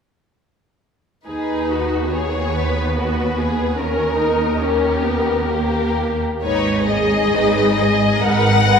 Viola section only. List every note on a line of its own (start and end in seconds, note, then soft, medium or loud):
1.25 2.08 D#4 soft
2.12 3.78 B3 soft
3.78 4.20 C#4 soft
4.18 4.60 D#4 soft
4.62 5.06 C#4 soft
5.05 5.51 B3 soft
5.51 6.22 A#3 soft
6.44 8.18 G#4 medium
8.21 8.66 A#4 soft
8.66 8.79 B4 soft